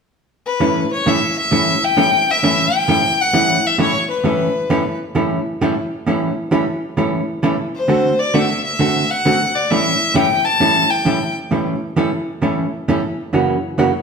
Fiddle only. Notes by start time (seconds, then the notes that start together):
0.46 B4
0.93 C#5
1.08 E5
1.39 E5
1.84 G5
2.30 E5
2.76 G5
3.21 F#5
3.66 E5
3.80 C#5
4.10 B4
7.76 C5
8.19 D5
8.34 E5
8.65 E5
9.11 F#5
9.55 D5
9.71 E5
10.16 G5
10.46 A5
10.90 G5